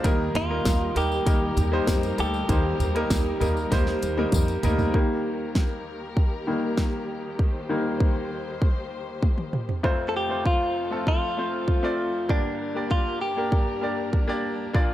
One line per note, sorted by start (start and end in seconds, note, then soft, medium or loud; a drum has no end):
0.03 0.29 D#2 medium
0.03 0.92 D#3 medium
0.03 0.41 G3 medium
0.03 4.90 G3 medium
0.03 0.42 A#3 medium
0.03 4.90 D#4 medium
0.03 0.42 D#4 medium
0.03 4.90 G4 medium
0.03 4.90 A#4 medium
0.03 0.43 A#4 loud
0.03 kick medium
0.03 closed hi-hat medium
0.03 tambourine soft
0.35 0.60 D#2 medium
0.35 0.97 F4 loud
0.35 closed hi-hat medium
0.35 floor tom medium
0.35 tambourine soft
0.49 0.87 G3 medium
0.49 0.88 A#3 medium
0.49 0.88 D#4 medium
0.49 0.88 A#4 medium
0.65 0.91 D#2 medium
0.65 kick loud
0.65 snare loud
0.65 closed hi-hat medium
0.65 tambourine medium
0.95 1.21 D#2 medium
0.95 1.21 G3 medium
0.95 1.21 A#3 medium
0.95 1.21 D#4 medium
0.95 2.15 G4 loud
0.95 1.22 A#4 medium
0.95 closed hi-hat medium
0.95 tambourine medium
1.12 tambourine soft
1.25 1.52 D#2 medium
1.25 1.64 G3 medium
1.25 1.64 A#3 medium
1.25 1.64 D#4 medium
1.25 1.65 A#4 medium
1.25 kick loud
1.25 closed hi-hat medium
1.25 tambourine medium
1.57 1.82 D#2 medium
1.57 closed hi-hat medium
1.57 floor tom medium
1.57 tambourine soft
1.71 2.10 G3 medium
1.71 2.10 A#3 medium
1.71 2.10 D#4 medium
1.71 2.11 C5 medium
1.87 2.13 F2 medium
1.87 kick medium
1.87 snare loud
1.87 closed hi-hat medium
1.87 tambourine medium
2.03 closed hi-hat medium
2.03 tambourine soft
2.17 2.44 D2 medium
2.17 2.43 G3 medium
2.17 2.43 A#3 medium
2.17 2.44 D#4 medium
2.17 4.60 G4 medium
2.17 2.44 A4 medium
2.17 closed hi-hat medium
2.17 tambourine medium
2.34 tambourine soft
2.48 2.74 D#2 loud
2.48 3.37 D#3 medium
2.48 2.86 G3 medium
2.48 2.87 A#3 medium
2.48 2.87 D#4 medium
2.48 2.87 C5 medium
2.48 kick loud
2.48 closed hi-hat medium
2.48 tambourine soft
2.79 3.05 D#2 medium
2.79 closed hi-hat medium
2.79 floor tom medium
2.79 tambourine soft
2.94 3.32 G3 medium
2.94 3.33 A#3 medium
2.94 3.33 D#4 medium
2.94 3.33 A#4 medium
2.94 closed hi-hat soft
3.10 3.35 D#2 medium
3.10 kick loud
3.10 snare loud
3.10 closed hi-hat medium
3.10 tambourine medium
3.40 3.66 D#2 medium
3.40 3.66 G3 medium
3.40 3.66 A#3 medium
3.40 3.66 D#4 medium
3.40 3.67 A#4 medium
3.40 closed hi-hat medium
3.40 floor tom medium
3.40 tambourine soft
3.57 tambourine soft
3.71 3.97 D#2 medium
3.71 4.09 G3 medium
3.71 4.09 A#3 medium
3.71 4.09 D#4 medium
3.71 4.10 C5 medium
3.71 kick loud
3.71 snare medium
3.71 closed hi-hat medium
3.71 tambourine soft
3.87 snare medium
4.02 4.27 D#2 medium
4.02 closed hi-hat medium
4.02 tambourine soft
4.17 4.55 G3 medium
4.17 4.55 A#3 medium
4.17 4.56 D#4 medium
4.17 4.56 A#4 medium
4.17 high tom medium
4.32 4.58 F2 medium
4.32 kick medium
4.32 closed hi-hat medium
4.32 mid tom medium
4.32 tambourine medium
4.48 closed hi-hat soft
4.48 tambourine soft
4.63 4.88 D2 medium
4.63 4.88 G3 medium
4.63 4.89 A#3 medium
4.63 4.89 D#4 medium
4.63 4.89 A#4 medium
4.63 closed hi-hat medium
4.63 floor tom medium
4.63 tambourine soft
4.78 floor tom medium
4.78 tambourine soft
4.94 9.80 D#2 medium
4.94 5.35 D#3 medium
4.94 9.80 D#3 medium
4.94 5.35 G3 soft
4.94 5.35 A#3 medium
4.94 9.80 G4 medium
4.94 7.37 A#4 medium
4.94 kick medium
5.55 kick medium
5.55 snare medium
6.17 kick medium
6.47 6.75 D#3 soft
6.47 6.75 G3 soft
6.47 6.75 A#3 soft
6.77 kick medium
6.77 snare medium
7.39 9.82 C5 medium
7.39 kick medium
7.69 8.10 D#3 soft
7.69 8.11 G3 soft
7.69 8.11 A#3 medium
8.00 kick medium
8.62 kick medium
9.23 kick medium
9.23 high tom soft
9.38 mid tom soft
9.53 mid tom medium
9.69 floor tom medium
9.83 12.25 F1 medium
9.83 12.25 F2 medium
9.83 12.27 F2 medium
9.83 12.27 F3 medium
9.83 10.21 A3 medium
9.83 10.22 C4 medium
9.83 12.27 C4 medium
9.83 10.22 F4 medium
9.83 12.27 A4 medium
9.83 10.22 C5 medium
9.83 kick medium
10.09 10.15 A4 medium
10.17 10.46 G4 medium
10.29 10.80 A3 medium
10.29 10.80 C4 medium
10.29 10.81 F4 medium
10.29 10.81 C5 medium
10.46 11.03 F4 medium
10.46 kick medium
10.91 11.29 A3 medium
10.91 11.29 C4 medium
10.91 11.29 F4 medium
10.91 11.30 A4 medium
11.07 12.34 F4 medium
11.07 kick medium
11.37 11.75 A3 medium
11.37 11.75 C4 medium
11.37 11.76 F4 medium
11.37 11.76 C5 medium
11.68 kick medium
11.83 12.21 A3 medium
11.83 12.21 C4 medium
11.83 12.21 F4 medium
11.83 12.22 D5 medium
12.29 14.70 G1 medium
12.29 14.71 G2 medium
12.29 14.72 G2 medium
12.29 14.72 G3 medium
12.29 12.67 A#3 medium
12.29 12.67 D4 medium
12.29 14.94 D4 medium
12.29 12.93 D4 medium
12.29 12.67 G4 medium
12.29 14.72 A#4 medium
12.29 12.68 D5 medium
12.29 kick medium
12.75 13.25 A#3 medium
12.75 13.26 D4 medium
12.75 13.26 G4 medium
12.75 13.26 D5 medium
12.91 13.21 F4 medium
12.91 kick medium
13.21 14.09 G4 medium
13.37 13.74 A#3 medium
13.37 13.74 D4 medium
13.37 13.75 G4 medium
13.37 13.75 A#4 medium
13.52 kick medium
13.81 14.20 A#3 medium
13.81 14.20 D4 medium
13.81 14.20 G4 medium
13.81 14.21 D5 medium
14.13 kick medium
14.28 14.66 A#3 medium
14.28 14.66 D4 medium
14.28 14.66 G4 medium
14.28 14.67 D5 medium
14.73 14.94 A#1 medium
14.73 14.94 A#2 medium
14.73 14.94 A#3 medium
14.73 14.94 D4 medium
14.73 14.94 F4 medium
14.73 14.94 D5 medium
14.73 kick medium